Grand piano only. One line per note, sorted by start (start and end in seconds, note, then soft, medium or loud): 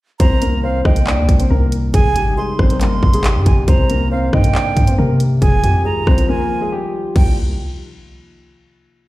0.20 0.39 C4 medium
0.20 0.39 C5 loud
0.42 0.61 A#3 medium
0.42 0.61 A#4 medium
0.63 0.83 C4 medium
0.63 0.82 C5 medium
0.85 1.04 D#4 medium
0.85 1.04 D#5 medium
1.07 1.38 D4 medium
1.07 1.38 D5 medium
1.39 1.49 C4 medium
1.39 1.49 C5 medium
1.50 1.70 A#3 medium
1.50 1.69 A#4 loud
1.94 2.13 G#3 medium
1.94 2.13 G#4 medium
2.16 2.35 G3 medium
2.16 2.34 G4 medium
2.37 2.57 G#3 medium
2.37 2.56 G#4 medium
2.59 2.78 C4 medium
2.59 2.78 C5 medium
2.81 3.12 A#3 medium
2.81 3.12 A#4 medium
3.14 3.24 G#3 medium
3.14 3.23 G#4 medium
3.25 3.66 G3 medium
3.25 3.65 G4 medium
3.68 3.87 C4 medium
3.68 3.87 C5 loud
3.90 4.09 A#3 medium
3.90 4.09 A#4 medium
4.12 4.31 C4 medium
4.12 4.30 C5 medium
4.33 4.52 D#4 medium
4.33 4.52 D#5 medium
4.55 4.86 D4 medium
4.55 4.86 D5 medium
4.87 4.97 C4 medium
4.87 4.97 C5 medium
4.98 5.18 A#3 medium
4.98 5.17 A#4 medium
5.42 5.61 G#3 medium
5.42 5.61 G#4 medium
5.63 5.83 G3 medium
5.63 5.82 G4 medium
5.85 6.04 G#3 medium
5.85 6.04 G#4 medium
6.07 6.26 C4 medium
6.07 6.26 C5 medium
6.29 6.60 A#3 medium
6.29 6.59 A#4 medium
6.61 6.71 G#3 medium
6.61 6.71 G#4 medium
6.72 7.13 G3 medium
6.72 7.13 G4 medium
7.16 7.36 G3 medium